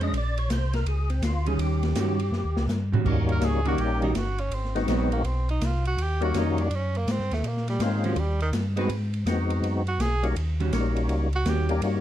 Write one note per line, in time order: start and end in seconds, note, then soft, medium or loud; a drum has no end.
0.00 0.11 F2 loud
0.00 0.12 G#3 medium
0.00 0.12 C#4 medium
0.00 0.13 D4 medium
0.00 0.14 D#5 loud
0.00 ride medium
0.12 0.48 A#1 medium
0.12 ride medium
0.17 0.38 D5 medium
0.37 0.50 C#5 loud
0.37 ride medium
0.49 0.85 C2 loud
0.49 0.74 C5 medium
0.49 snare medium
0.49 hi-hat pedal medium
0.49 ride medium
0.73 0.86 A#4 loud
0.73 snare medium
0.73 ride soft
0.85 1.21 C#2 medium
0.85 1.10 G#4 loud
0.85 ride medium
1.10 1.22 C4 medium
1.10 ride soft
1.21 1.58 D2 medium
1.21 1.47 F4 medium
1.21 snare medium
1.21 hi-hat pedal medium
1.21 ride medium
1.46 1.93 D#3 medium
1.46 1.94 G3 medium
1.46 1.94 C#4 medium
1.46 1.59 G#4 loud
1.46 ride medium
1.58 1.94 D#2 medium
1.58 2.66 G4 medium
1.58 ride medium
1.83 snare medium
1.83 ride soft
1.95 2.31 G2 loud
1.95 2.17 D#3 medium
1.95 2.17 G3 medium
1.95 2.17 C#4 medium
1.95 2.18 F#4 medium
1.95 snare medium
1.95 hi-hat pedal medium
1.95 ride medium
2.19 ride soft
2.32 2.44 F#2 medium
2.32 snare medium
2.44 2.57 D#2 medium
2.56 2.68 C#2 medium
2.56 snare medium
2.68 3.04 G2 loud
2.68 snare medium
2.68 hi-hat pedal medium
2.92 3.04 D#3 medium
2.92 3.04 G3 medium
2.92 3.05 C#4 medium
2.92 3.05 F#4 medium
2.92 floor tom loud
3.05 3.41 D#2 medium
3.05 3.61 G3 medium
3.05 3.61 A#3 medium
3.05 3.61 C#4 medium
3.05 3.62 D#4 medium
3.05 3.62 F#4 medium
3.05 kick medium
3.05 crash medium
3.29 3.46 A#4 medium
3.29 ride soft
3.41 3.77 C#2 loud
3.41 3.67 G#4 medium
3.41 snare medium
3.41 hi-hat pedal medium
3.41 ride medium
3.65 3.77 D#3 medium
3.65 4.12 G3 medium
3.65 3.77 G3 medium
3.65 4.13 A#3 medium
3.65 3.77 C#4 medium
3.65 4.13 C#4 medium
3.65 4.13 D#4 medium
3.65 3.77 F#4 medium
3.65 3.83 F#4 loud
3.65 4.13 G4 medium
3.65 ride soft
3.78 4.14 A#1 medium
3.78 4.03 G4 loud
3.78 ride medium
4.02 4.14 D#3 medium
4.02 4.14 G3 medium
4.02 4.14 C#4 medium
4.02 4.19 D#4 medium
4.02 4.14 F#4 medium
4.02 ride soft
4.14 4.50 G1 medium
4.14 4.41 F#4 loud
4.14 snare medium
4.14 hi-hat pedal medium
4.14 ride medium
4.38 4.56 C#4 medium
4.38 ride soft
4.50 4.86 G#1 medium
4.50 4.76 C4 medium
4.50 ride medium
4.64 snare soft
4.75 4.92 D#3 soft
4.75 5.22 G#3 medium
4.75 5.22 B3 medium
4.75 5.22 C4 medium
4.75 5.23 D#4 medium
4.75 5.23 F#4 loud
4.75 snare soft
4.75 ride soft
4.87 5.23 A#1 medium
4.87 5.10 F#3 medium
4.87 5.12 F#3 medium
4.87 5.10 B3 medium
4.87 5.10 C4 medium
4.87 snare medium
4.87 hi-hat pedal medium
4.87 ride medium
5.12 5.27 A#3 medium
5.12 ride soft
5.24 5.60 B1 medium
5.24 5.49 C4 medium
5.24 ride medium
5.49 5.67 D#4 medium
5.49 ride soft
5.61 5.96 C2 loud
5.61 snare medium
5.61 hi-hat pedal medium
5.61 ride medium
5.65 5.86 F4 medium
5.85 6.04 F#4 medium
5.85 ride soft
5.97 6.33 D#2 medium
5.97 ride medium
6.02 6.23 G4 loud
6.21 6.68 G3 medium
6.21 6.68 A#3 medium
6.21 6.69 C#4 medium
6.21 6.69 D#4 medium
6.21 6.69 F#4 medium
6.21 6.40 F#4 loud
6.21 ride soft
6.34 6.70 F2 loud
6.34 6.56 D#3 medium
6.34 6.56 G3 medium
6.34 6.56 C#4 medium
6.34 6.56 F#4 medium
6.34 snare medium
6.34 hi-hat pedal medium
6.34 ride medium
6.38 6.62 D#4 medium
6.58 6.76 D4 medium
6.58 ride soft
6.71 7.06 F#2 medium
6.71 ride medium
6.75 6.99 C#4 medium
6.95 7.13 A#3 loud
6.95 ride soft
7.07 7.19 G#2 medium
7.07 snare medium
7.07 hi-hat pedal medium
7.07 ride medium
7.11 7.35 C4 loud
7.18 7.31 G2 medium
7.18 snare soft
7.31 7.43 D#2 medium
7.31 7.49 A3 medium
7.31 snare medium
7.31 ride medium
7.43 7.79 A#2 medium
7.43 ride medium
7.47 7.69 A#3 medium
7.57 snare soft
7.68 7.85 G3 medium
7.68 snare soft
7.68 ride soft
7.79 8.15 G#2 loud
7.79 8.05 D#3 medium
7.79 8.17 G#3 medium
7.79 8.17 A#3 medium
7.79 8.17 C4 medium
7.79 8.18 C#4 medium
7.79 8.18 F4 medium
7.79 snare medium
7.79 hi-hat pedal medium
7.79 ride medium
8.04 8.16 D#3 medium
8.04 8.21 F3 medium
8.04 8.16 G3 medium
8.04 8.16 C#4 medium
8.04 8.16 F#4 medium
8.04 ride medium
8.16 8.52 D#2 medium
8.16 8.41 G3 loud
8.16 ride medium
8.40 8.49 D#3 loud
8.40 ride soft
8.52 8.89 G2 loud
8.52 snare medium
8.52 hi-hat pedal medium
8.52 ride medium
8.76 8.88 G#3 medium
8.76 8.89 G#3 medium
8.76 8.89 B3 medium
8.76 8.89 C4 medium
8.76 8.89 D#4 medium
8.76 8.89 F#4 medium
8.76 8.89 B4 medium
8.76 ride medium
8.89 9.25 G#2 medium
8.89 ride medium
9.14 ride soft
9.25 9.62 F2 medium
9.25 9.82 G#3 medium
9.25 9.82 B3 medium
9.25 9.83 C4 medium
9.25 9.83 D#4 medium
9.25 9.83 F#4 medium
9.25 snare medium
9.25 hi-hat pedal medium
9.25 ride medium
9.50 ride medium
9.62 9.98 F#2 medium
9.62 ride medium
9.87 10.03 F#4 loud
9.87 ride soft
9.99 10.35 B1 medium
9.99 10.24 G#4 loud
9.99 snare medium
9.99 hi-hat pedal medium
9.99 ride medium
10.23 10.35 G3 medium
10.23 10.35 A#3 medium
10.23 10.35 C#4 medium
10.23 10.36 D#4 medium
10.23 10.36 F#4 medium
10.23 ride medium
10.36 10.72 D#2 medium
10.36 ride medium
10.60 10.72 D#3 medium
10.60 10.72 G3 medium
10.60 10.72 C#4 medium
10.60 10.72 F#4 medium
10.60 ride soft
10.72 11.08 A#1 medium
10.72 11.29 G3 medium
10.72 11.29 A#3 medium
10.72 11.29 C#4 medium
10.72 11.29 D#4 medium
10.72 11.29 F#4 medium
10.72 snare medium
10.72 hi-hat pedal medium
10.72 ride medium
10.96 ride medium
11.09 11.45 C#2 loud
11.09 ride medium
11.33 11.50 F#4 loud
11.33 ride soft
11.45 11.81 D#2 loud
11.45 11.67 D#3 medium
11.45 11.67 G3 medium
11.45 11.68 C#4 medium
11.45 11.68 F#4 medium
11.45 snare medium
11.45 hi-hat pedal medium
11.45 ride medium
11.49 11.71 G4 loud
11.69 11.81 G3 medium
11.69 11.82 A#3 medium
11.69 11.82 C#4 medium
11.69 11.82 D#4 medium
11.69 11.82 G4 medium
11.69 ride medium
11.81 12.01 G2 medium
11.81 12.01 G3 medium
11.81 12.01 A#3 medium
11.81 12.01 C#4 medium
11.81 12.01 D#4 medium
11.81 12.01 F#4 medium
11.81 ride medium